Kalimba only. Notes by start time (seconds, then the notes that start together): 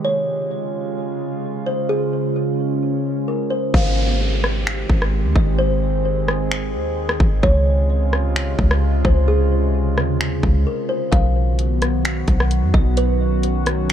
0.05 C#5
1.66 C5
1.89 G#4
3.28 A#4
3.50 C5
3.74 F5
5.36 D#5
5.58 C5
7.43 C#5
9.05 C5
9.28 G#4
10.67 A#4
10.89 C5
11.12 F5
12.74 D#5
12.97 B4